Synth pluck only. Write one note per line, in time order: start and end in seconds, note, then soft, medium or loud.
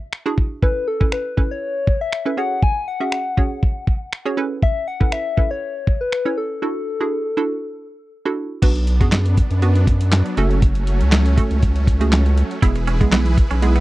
0.26 0.44 D4 medium
0.26 0.44 E4 medium
0.26 0.45 F#4 medium
0.26 0.45 G#4 loud
0.62 0.82 C#4 medium
0.62 0.82 E4 medium
0.62 0.82 A4 medium
0.62 0.82 B4 medium
1.00 1.19 C#4 medium
1.00 1.19 E4 medium
1.00 1.19 A4 medium
1.00 1.20 B4 medium
1.37 1.82 C#4 medium
1.37 1.82 E4 medium
1.37 1.82 A4 medium
1.37 1.82 B4 medium
2.25 2.36 C#4 medium
2.25 2.38 E4 medium
2.25 2.38 A4 medium
2.25 2.38 B4 medium
2.37 2.87 C#4 medium
2.37 2.87 F#4 medium
2.37 2.88 G#4 medium
2.37 2.88 C#5 medium
3.00 3.19 C#4 medium
3.00 3.19 F#4 medium
3.00 3.19 G#4 medium
3.00 3.20 E5 medium
3.37 3.82 C#4 medium
3.37 3.82 F#4 medium
3.37 3.82 G#4 medium
3.37 3.82 C#5 medium
4.25 4.36 C#4 medium
4.25 4.37 F#4 medium
4.25 4.38 G#4 medium
4.25 4.38 C#5 loud
4.37 4.87 C#4 medium
4.37 4.87 E4 medium
4.37 4.88 A4 medium
4.37 4.88 B4 loud
5.00 5.19 C#4 medium
5.00 5.19 E4 medium
5.00 5.19 A4 medium
5.00 5.20 B4 medium
5.37 5.82 C#4 medium
5.37 5.82 E4 medium
5.37 5.82 A4 medium
5.37 5.82 B4 medium
6.25 6.44 C#4 medium
6.25 6.44 E4 medium
6.25 6.44 A4 medium
6.25 6.45 C#5 medium
6.62 6.82 D4 medium
6.62 6.82 E4 medium
6.62 6.82 F#4 medium
6.62 6.82 A4 medium
7.00 7.19 D4 medium
7.00 7.19 E4 medium
7.00 7.19 F#4 medium
7.00 7.19 G#4 medium
7.37 7.82 D4 medium
7.37 7.82 E4 medium
7.37 7.82 F#4 medium
7.37 7.82 A4 loud
8.25 8.44 D4 medium
8.25 8.44 E4 medium
8.25 8.44 F#4 medium
8.25 8.45 A4 medium
8.62 8.82 B3 medium
8.62 8.82 D4 medium
8.62 8.82 F#4 medium
8.62 8.82 B4 loud
9.00 9.32 B3 medium
9.00 9.32 D4 medium
9.00 9.32 F#4 medium
9.00 9.32 G#4 loud
9.62 10.13 B3 medium
9.62 10.13 D4 medium
9.62 10.13 F#4 medium
9.62 10.13 B4 medium
10.37 11.18 A3 medium
10.37 11.18 C#4 medium
10.37 11.18 F#4 medium
10.37 11.18 A4 loud
11.37 11.70 A3 medium
11.37 11.70 C#4 medium
11.37 11.70 F#4 medium
11.37 11.70 A4 loud
12.00 12.32 A3 medium
12.00 12.32 C#4 medium
12.00 12.32 F#4 medium
12.00 12.32 G#4 loud
12.62 12.82 G#3 medium
12.62 12.82 B3 medium
12.62 12.82 E4 medium
12.62 12.82 G#4 loud
13.01 13.32 G#3 medium
13.01 13.32 B3 medium
13.01 13.32 E4 medium
13.01 13.32 G#4 loud
13.62 13.80 G#3 medium
13.62 13.80 B3 medium
13.62 13.80 E4 medium
13.62 13.80 G#4 loud